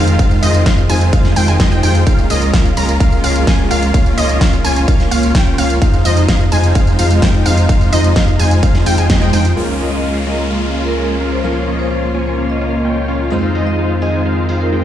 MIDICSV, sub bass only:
0, 0, Header, 1, 2, 480
1, 0, Start_track
1, 0, Key_signature, -4, "minor"
1, 0, Tempo, 468750
1, 197, Time_signature, 4, 2, 24, 8
1, 15198, End_track
2, 0, Start_track
2, 0, Title_t, "Sub bass"
2, 0, Program_c, 0, 38
2, 0, Note_on_c, 0, 41, 97
2, 173, Note_off_c, 0, 41, 0
2, 196, Note_on_c, 0, 41, 95
2, 412, Note_off_c, 0, 41, 0
2, 436, Note_on_c, 0, 41, 95
2, 652, Note_off_c, 0, 41, 0
2, 676, Note_on_c, 0, 41, 99
2, 892, Note_off_c, 0, 41, 0
2, 917, Note_on_c, 0, 41, 97
2, 1133, Note_off_c, 0, 41, 0
2, 1156, Note_on_c, 0, 41, 94
2, 1372, Note_off_c, 0, 41, 0
2, 1397, Note_on_c, 0, 41, 100
2, 1493, Note_off_c, 0, 41, 0
2, 1517, Note_on_c, 0, 41, 93
2, 1612, Note_off_c, 0, 41, 0
2, 1636, Note_on_c, 0, 41, 98
2, 1732, Note_off_c, 0, 41, 0
2, 1757, Note_on_c, 0, 41, 98
2, 1853, Note_off_c, 0, 41, 0
2, 1877, Note_on_c, 0, 41, 96
2, 2093, Note_off_c, 0, 41, 0
2, 2116, Note_on_c, 0, 37, 100
2, 2332, Note_off_c, 0, 37, 0
2, 2358, Note_on_c, 0, 37, 95
2, 2573, Note_off_c, 0, 37, 0
2, 2596, Note_on_c, 0, 37, 103
2, 2812, Note_off_c, 0, 37, 0
2, 2838, Note_on_c, 0, 37, 97
2, 3053, Note_off_c, 0, 37, 0
2, 3077, Note_on_c, 0, 37, 93
2, 3293, Note_off_c, 0, 37, 0
2, 3316, Note_on_c, 0, 37, 101
2, 3532, Note_off_c, 0, 37, 0
2, 3556, Note_on_c, 0, 37, 95
2, 3772, Note_off_c, 0, 37, 0
2, 3797, Note_on_c, 0, 37, 98
2, 4013, Note_off_c, 0, 37, 0
2, 4036, Note_on_c, 0, 37, 96
2, 4252, Note_off_c, 0, 37, 0
2, 4276, Note_on_c, 0, 37, 95
2, 4492, Note_off_c, 0, 37, 0
2, 4516, Note_on_c, 0, 37, 99
2, 4732, Note_off_c, 0, 37, 0
2, 4757, Note_on_c, 0, 37, 99
2, 4973, Note_off_c, 0, 37, 0
2, 4996, Note_on_c, 0, 37, 91
2, 5212, Note_off_c, 0, 37, 0
2, 5236, Note_on_c, 0, 37, 103
2, 5452, Note_off_c, 0, 37, 0
2, 5476, Note_on_c, 0, 37, 97
2, 5692, Note_off_c, 0, 37, 0
2, 5717, Note_on_c, 0, 37, 93
2, 5933, Note_off_c, 0, 37, 0
2, 5957, Note_on_c, 0, 41, 101
2, 6172, Note_off_c, 0, 41, 0
2, 6196, Note_on_c, 0, 41, 94
2, 6412, Note_off_c, 0, 41, 0
2, 6436, Note_on_c, 0, 41, 104
2, 6652, Note_off_c, 0, 41, 0
2, 6676, Note_on_c, 0, 41, 98
2, 6892, Note_off_c, 0, 41, 0
2, 6915, Note_on_c, 0, 41, 96
2, 7132, Note_off_c, 0, 41, 0
2, 7157, Note_on_c, 0, 41, 101
2, 7373, Note_off_c, 0, 41, 0
2, 7396, Note_on_c, 0, 41, 96
2, 7612, Note_off_c, 0, 41, 0
2, 7636, Note_on_c, 0, 41, 100
2, 7852, Note_off_c, 0, 41, 0
2, 7876, Note_on_c, 0, 41, 93
2, 8092, Note_off_c, 0, 41, 0
2, 8116, Note_on_c, 0, 41, 98
2, 8332, Note_off_c, 0, 41, 0
2, 8356, Note_on_c, 0, 41, 102
2, 8572, Note_off_c, 0, 41, 0
2, 8595, Note_on_c, 0, 41, 100
2, 8812, Note_off_c, 0, 41, 0
2, 8836, Note_on_c, 0, 41, 93
2, 9052, Note_off_c, 0, 41, 0
2, 9077, Note_on_c, 0, 41, 103
2, 9173, Note_off_c, 0, 41, 0
2, 9198, Note_on_c, 0, 41, 98
2, 9293, Note_off_c, 0, 41, 0
2, 9315, Note_on_c, 0, 41, 98
2, 9412, Note_off_c, 0, 41, 0
2, 9437, Note_on_c, 0, 41, 102
2, 9533, Note_off_c, 0, 41, 0
2, 9557, Note_on_c, 0, 41, 100
2, 9773, Note_off_c, 0, 41, 0
2, 9797, Note_on_c, 0, 37, 85
2, 11693, Note_off_c, 0, 37, 0
2, 11716, Note_on_c, 0, 37, 84
2, 13612, Note_off_c, 0, 37, 0
2, 13637, Note_on_c, 0, 41, 86
2, 15198, Note_off_c, 0, 41, 0
2, 15198, End_track
0, 0, End_of_file